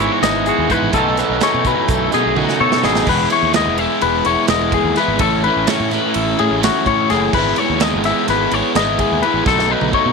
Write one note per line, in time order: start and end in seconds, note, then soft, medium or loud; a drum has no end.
0.00 0.69 G#2 medium
0.00 0.22 E3 medium
0.00 0.95 E3 medium
0.00 0.22 G#3 medium
0.00 0.24 B3 medium
0.00 0.15 E4 medium
0.00 0.24 E4 medium
0.00 0.22 C#5 medium
0.12 0.47 F#4 medium
0.22 0.50 G#1 loud
0.22 0.69 E3 medium
0.22 0.69 G#3 medium
0.22 0.71 B3 medium
0.22 0.72 E4 loud
0.22 0.46 D#5 medium
0.22 snare loud
0.22 closed hi-hat loud
0.46 0.97 F#4 medium
0.46 0.71 G#4 medium
0.46 closed hi-hat medium
0.58 0.67 D#2 loud
0.69 0.92 G#2 medium
0.69 0.91 G#2 medium
0.69 0.94 E3 loud
0.69 0.93 G#3 loud
0.69 0.96 B3 loud
0.69 0.97 E4 loud
0.69 0.94 B4 medium
0.69 kick medium
0.69 closed hi-hat medium
0.82 0.91 A1 medium
0.93 1.21 B1 loud
0.93 1.39 B2 medium
0.93 1.41 B2 medium
0.93 1.41 E3 medium
0.93 1.20 F#3 medium
0.93 1.19 A3 medium
0.93 3.05 C#4 medium
0.93 1.19 A4 medium
0.93 kick loud
0.93 closed hi-hat loud
0.97 1.17 D#4 loud
0.97 2.14 A4 medium
1.17 1.40 F#3 medium
1.17 1.41 A3 medium
1.17 1.43 D#4 medium
1.17 1.42 B4 medium
1.17 snare soft
1.17 closed hi-hat medium
1.30 1.39 B1 medium
1.40 1.88 B2 medium
1.40 5.20 E3 medium
1.40 1.66 F#3 medium
1.40 1.65 A3 medium
1.40 1.63 D#4 medium
1.40 1.66 C#5 medium
1.40 snare loud
1.40 closed hi-hat medium
1.54 1.72 B2 medium
1.65 2.14 F#3 medium
1.65 2.13 A3 medium
1.65 2.11 D#4 medium
1.65 1.90 B4 medium
1.65 kick medium
1.65 closed hi-hat medium
1.88 2.07 B1 loud
1.88 2.13 A4 medium
1.88 kick loud
1.88 closed hi-hat loud
2.12 2.84 F#2 medium
2.12 2.23 B2 medium
2.12 2.36 F#3 medium
2.12 2.36 A3 medium
2.12 2.38 D#4 medium
2.12 2.37 G#4 medium
2.12 2.60 G#4 medium
2.12 snare soft
2.12 closed hi-hat medium
2.26 2.43 B1 loud
2.36 2.82 B2 medium
2.36 2.83 F#3 medium
2.36 2.85 A3 medium
2.36 2.85 D#4 medium
2.36 2.60 F#4 medium
2.36 high tom medium
2.49 snare medium
2.60 2.86 B2 loud
2.60 3.04 A4 medium
2.60 2.84 C#5 medium
2.72 snare medium
2.83 3.02 A1 loud
2.83 3.05 B2 loud
2.83 3.07 B2 medium
2.83 3.06 F#3 medium
2.83 3.07 A3 loud
2.83 3.07 D#4 loud
2.83 3.08 G#4 medium
2.83 snare medium
2.95 snare medium
3.07 3.25 E1 loud
3.07 3.55 E3 medium
3.07 3.33 G#3 loud
3.07 3.32 B3 medium
3.07 3.30 E4 loud
3.07 3.32 B4 loud
3.07 kick loud
3.07 crash loud
3.30 3.56 B3 medium
3.30 3.58 E4 medium
3.30 3.55 C#5 medium
3.30 ride medium
3.35 3.55 G#3 medium
3.42 3.68 D#2 medium
3.53 4.49 E3 medium
3.53 3.81 G#3 medium
3.53 3.79 B3 medium
3.53 3.79 D#5 medium
3.53 snare loud
3.53 ride loud
3.59 3.78 E4 loud
3.67 3.85 E1 loud
3.78 4.26 B3 medium
3.78 4.25 E4 medium
3.78 4.02 E5 medium
3.78 ride medium
3.82 4.27 G#3 medium
4.01 4.20 E1 medium
4.01 4.26 B4 loud
4.01 ride loud
4.25 4.35 E1 medium
4.25 4.49 G#3 medium
4.25 4.50 B3 medium
4.25 4.52 E4 medium
4.25 4.49 C#5 medium
4.25 ride medium
4.48 4.76 E1 medium
4.48 4.97 E3 medium
4.48 4.97 G#3 medium
4.48 4.98 B3 medium
4.48 4.73 D#5 medium
4.48 snare loud
4.48 ride loud
4.53 5.00 E4 medium
4.72 4.97 G#4 medium
4.72 kick medium
4.72 ride medium
4.84 4.93 D#2 medium
4.96 5.20 E3 loud
4.96 5.20 G#3 loud
4.96 5.20 B3 loud
4.96 5.20 B4 medium
4.96 snare soft
4.96 ride medium
5.00 5.23 E4 loud
5.08 5.17 G#1 loud
5.19 5.47 A1 medium
5.19 5.67 A2 medium
5.19 5.69 E3 loud
5.19 5.46 A3 loud
5.19 5.45 C#4 loud
5.19 5.44 A4 loud
5.19 kick loud
5.19 ride loud
5.23 5.44 E4 loud
5.44 5.68 A3 medium
5.44 5.70 C#4 medium
5.44 5.71 E4 medium
5.44 5.67 B4 medium
5.44 ride medium
5.56 5.65 A1 medium
5.67 6.15 A2 medium
5.67 6.60 E3 medium
5.67 5.92 A3 loud
5.67 5.92 C#4 medium
5.67 5.92 C#5 medium
5.67 snare loud
5.67 ride loud
5.71 5.90 E4 loud
5.80 5.98 A2 medium
5.90 6.39 A3 medium
5.90 6.38 C#4 medium
5.90 6.38 E4 medium
5.90 6.15 B4 medium
5.90 snare soft
5.90 ride medium
6.14 6.33 A1 medium
6.14 6.39 A4 medium
6.14 ride loud
6.38 6.48 A2 medium
6.38 6.61 A3 medium
6.38 6.62 C#4 medium
6.38 6.64 E4 medium
6.38 6.62 G#4 medium
6.38 ride medium
6.51 6.69 A1 loud
6.61 7.10 E3 medium
6.61 7.10 A3 medium
6.61 7.11 C#4 medium
6.61 7.13 E4 medium
6.61 6.87 F#4 medium
6.61 snare loud
6.61 ride loud
6.86 7.13 A2 loud
6.86 7.10 C#5 medium
6.86 kick medium
6.86 ride medium
7.09 7.29 F#1 loud
7.09 7.31 A2 loud
7.09 7.35 E3 loud
7.09 7.32 A3 loud
7.09 7.33 C#4 loud
7.09 7.33 G#4 medium
7.09 snare soft
7.09 ride medium
7.13 7.38 E4 loud
7.33 7.51 G#1 loud
7.33 7.80 G#2 loud
7.33 7.81 E3 loud
7.33 7.60 G#3 loud
7.33 7.59 B3 loud
7.33 7.58 B4 medium
7.33 kick loud
7.33 crash loud
7.38 7.57 E4 loud
7.56 7.83 B3 medium
7.56 7.84 E4 medium
7.56 7.82 C#5 medium
7.56 ride medium
7.61 7.82 G#3 medium
7.70 7.95 D#2 medium
7.80 8.28 G#2 medium
7.80 8.77 E3 medium
7.80 8.08 G#3 medium
7.80 8.08 B3 loud
7.80 8.04 D#5 medium
7.80 snare loud
7.80 ride loud
7.84 8.06 E4 loud
7.93 8.11 G#1 medium
8.04 8.52 E4 medium
8.04 8.28 E5 medium
8.04 snare soft
8.04 ride medium
8.08 8.55 G#3 medium
8.08 8.54 B3 medium
8.28 8.46 G#1 medium
8.28 8.54 B4 medium
8.28 snare soft
8.28 ride loud
8.51 8.61 G#1 medium
8.51 8.79 B3 medium
8.51 8.80 E4 medium
8.51 8.76 C#5 medium
8.51 ride medium
8.56 8.77 G#3 medium
8.75 9.02 G#1 medium
8.75 9.24 E3 medium
8.75 9.24 G#3 medium
8.75 8.99 D#5 medium
8.75 snare loud
8.75 ride loud
8.80 9.26 B3 medium
8.80 9.27 E4 loud
8.99 9.23 G#4 medium
8.99 kick medium
8.99 ride medium
9.12 9.20 D#2 loud
9.22 9.45 G#2 loud
9.22 9.46 E3 loud
9.22 9.46 G#3 loud
9.22 9.48 B3 loud
9.22 9.46 B4 medium
9.22 ride medium
9.27 9.49 E4 loud
9.34 9.43 A1 loud
9.46 9.73 B1 loud
9.46 9.91 B2 loud
9.46 9.71 F#3 loud
9.46 9.69 A3 loud
9.46 9.67 D#4 loud
9.46 9.71 A4 medium
9.46 kick loud
9.46 snare medium
9.59 snare medium
9.69 9.91 F#3 medium
9.69 9.93 A3 medium
9.69 9.94 D#4 medium
9.69 9.94 B4 medium
9.81 9.90 B1 medium
9.81 high tom medium
9.92 10.12 B2 medium
9.92 10.12 F#3 medium
9.92 10.12 A3 loud
9.92 10.12 D#4 medium
9.92 10.12 C#5 medium
9.92 kick medium
10.06 10.12 B2 medium